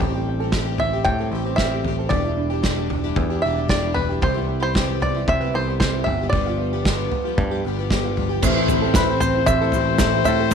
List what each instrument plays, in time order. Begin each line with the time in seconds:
Already playing: steel-string acoustic guitar D3 G3, five-string banjo G5
0.00 picked electric bass A1, twelve-string acoustic guitar A2 E3 G3 C4 G4, upright piano C4, kick, floor tom
0.14 twelve-string acoustic guitar G3 C4 G4, upright piano G4
0.27 upright piano C4
0.40 twelve-string acoustic guitar C4 G4, upright piano A4
0.44 twelve-string acoustic guitar G3
0.52 twelve-string acoustic guitar A2 E3 G3 G4, kick, snare
0.56 twelve-string acoustic guitar C4
0.67 upright piano C5
0.78 twelve-string acoustic guitar E3 G3, upright piano C4, five-string banjo E5, floor tom
0.82 twelve-string acoustic guitar C4 G4
0.93 twelve-string acoustic guitar G3 C4 G4, upright piano G4
1.05 picked electric bass A2, five-string banjo G5, kick, floor tom
1.18 twelve-string acoustic guitar G3 C4 G4, upright piano A4
1.31 picked electric bass A1, twelve-string acoustic guitar E3 G3 C4 G4, upright piano C4
1.45 twelve-string acoustic guitar G3 C4 G4, upright piano C5
1.56 twelve-string acoustic guitar A2 E3 G3 C4, upright piano C4, five-string banjo E5, kick, snare
1.60 twelve-string acoustic guitar G4
1.72 upright piano G4
1.84 twelve-string acoustic guitar E3 G3 C4 G4, floor tom
1.97 twelve-string acoustic guitar C4 G4, upright piano A4
2.01 twelve-string acoustic guitar G3
2.09 picked electric bass E1, twelve-string acoustic guitar E2 B2 E3 G3 D4, upright piano D4, five-string banjo D5, kick, floor tom
2.13 twelve-string acoustic guitar G4
2.24 twelve-string acoustic guitar E3 G3 D4 G4, upright piano E4
2.37 upright piano D4
2.50 twelve-string acoustic guitar E3 G3 D4 G4, upright piano G4
2.63 twelve-string acoustic guitar E2 B2 E3 G3 D4 G4, upright piano D4, kick, snare
2.76 upright piano D5
2.90 twelve-string acoustic guitar E3 G3 D4, upright piano D4, floor tom
2.94 twelve-string acoustic guitar G4
3.03 twelve-string acoustic guitar E3 G3 D4 G4, upright piano E4
3.16 picked electric bass E2, upright piano D4, kick, floor tom
3.30 twelve-string acoustic guitar E3 G3 D4 G4, upright piano G4
3.42 picked electric bass E1, twelve-string acoustic guitar E3 G3 D4, upright piano D4, five-string banjo E5
3.47 twelve-string acoustic guitar G4
3.56 twelve-string acoustic guitar E3 G3 D4 G4, upright piano D5
3.68 twelve-string acoustic guitar E2 B2 E3 G3 D4 G4, upright piano D4, five-string banjo D5, kick, snare
3.83 upright piano E4
3.94 twelve-string acoustic guitar E3 G3 D4, five-string banjo B4, floor tom
3.99 twelve-string acoustic guitar G4
4.09 twelve-string acoustic guitar E3 G3 D4 G4, upright piano G4
4.22 picked electric bass C2, twelve-string acoustic guitar C3 E3 G3 B3 G4, upright piano C4, five-string banjo C5, kick, floor tom
4.34 twelve-string acoustic guitar G3 B3 G4, upright piano E4
4.48 upright piano C4
4.60 twelve-string acoustic guitar G3 B3 G4, five-string banjo C5, upright piano B5
4.74 twelve-string acoustic guitar C3 E3 G3 B3 G4, upright piano C4, kick, snare
4.88 upright piano C5
5.01 twelve-string acoustic guitar E3 G3 B3 G4, upright piano C4, five-string banjo D5, floor tom
5.15 twelve-string acoustic guitar G3 B3 G4, upright piano E4
5.28 picked electric bass C3, upright piano C4, five-string banjo E5, kick, floor tom
5.41 twelve-string acoustic guitar G3 B3 G4, upright piano B4
5.53 picked electric bass C2, twelve-string acoustic guitar E3 G3 B3, upright piano C4, five-string banjo C5
5.58 twelve-string acoustic guitar G4
5.68 twelve-string acoustic guitar G3 B3 G4, upright piano C5
5.80 twelve-string acoustic guitar C3 E3 G3 B3 G4, upright piano C4, five-string banjo C5, kick, snare
5.94 upright piano E4
6.04 picked electric bass G1, twelve-string acoustic guitar F3 G3, five-string banjo E5, floor tom
6.09 twelve-string acoustic guitar B3 G4
6.20 twelve-string acoustic guitar G3 B3 G4, upright piano G4
6.25 twelve-string acoustic guitar F3
6.29 twelve-string acoustic guitar G2, upright piano B3, five-string banjo D5, kick, floor tom
6.34 twelve-string acoustic guitar D3 F3 G3 B3 G4
6.46 twelve-string acoustic guitar F3 G3 B3 G4, upright piano F4
6.59 upright piano B3
6.72 twelve-string acoustic guitar F3 G3 B3 G4, upright piano G4
6.85 twelve-string acoustic guitar G2 D3 F3 G3 B3 G4, upright piano B3, kick, snare
6.98 upright piano B4
7.11 twelve-string acoustic guitar F3 G3 B3, upright piano B3, floor tom
7.15 twelve-string acoustic guitar G4
7.24 twelve-string acoustic guitar G3 B3 G4, upright piano F4
7.29 twelve-string acoustic guitar F3
7.37 picked electric bass G2, upright piano B3, kick, floor tom
7.50 twelve-string acoustic guitar G3 B3 G4, upright piano G4
7.55 twelve-string acoustic guitar F3
7.64 picked electric bass G1, twelve-string acoustic guitar F3 G3 B3, upright piano B3
7.68 twelve-string acoustic guitar G4
7.77 twelve-string acoustic guitar G3 B3 G4, upright piano B4
7.82 twelve-string acoustic guitar F3
7.90 twelve-string acoustic guitar G2 D3 F3 G3 B3 G4, upright piano B3, kick, snare
8.04 upright piano F4
8.17 twelve-string acoustic guitar F3 G3 B3 G4, floor tom
8.29 twelve-string acoustic guitar F3 G3 B3 G4, upright piano G4
8.42 picked electric bass A1, felt piano A1 A2 A3 C4 E4 C5 E5, twelve-string acoustic guitar A2 E3 A3 C4 E4, harmonium C3 A3 E4, upright piano C4, trumpet C5, kick, floor tom, crash, shaker
8.55 upright piano E4
8.68 upright piano C4, floor tom, shaker
8.82 twelve-string acoustic guitar C4 E4, upright piano A4
8.87 twelve-string acoustic guitar A3
8.94 twelve-string acoustic guitar A2, felt piano A3 C4 E4 C5 E5, upright piano C4, five-string banjo B4, kick, snare, floor tom, shaker
8.98 twelve-string acoustic guitar E3 A3 C4 E4
9.08 twelve-string acoustic guitar C4 E4, upright piano C5
9.13 twelve-string acoustic guitar A3
9.20 twelve-string acoustic guitar E3 A3, upright piano C4, five-string banjo C5, floor tom, shaker
9.25 twelve-string acoustic guitar C4 E4
9.35 upright piano E4
9.46 picked electric bass A1, felt piano A3 C4 E4 C5, upright piano C4, five-string banjo E5, kick, floor tom, shaker
9.61 twelve-string acoustic guitar A3 C4 E4, upright piano A4
9.72 picked electric bass A1, twelve-string acoustic guitar E3 A3, upright piano C4, floor tom, shaker
9.77 twelve-string acoustic guitar C4 E4
9.98 picked electric bass A1, twelve-string acoustic guitar A2 E3, felt piano A3 C4 E4 C5 E5, upright piano C4, kick, snare, floor tom, shaker
10.03 twelve-string acoustic guitar A3 C4 E4
10.14 upright piano E4
10.24 picked electric bass A2, twelve-string acoustic guitar E3 A3, upright piano C4, five-string banjo E5, floor tom, shaker
10.29 twelve-string acoustic guitar C4 E4
10.40 upright piano A4
10.51 floor tom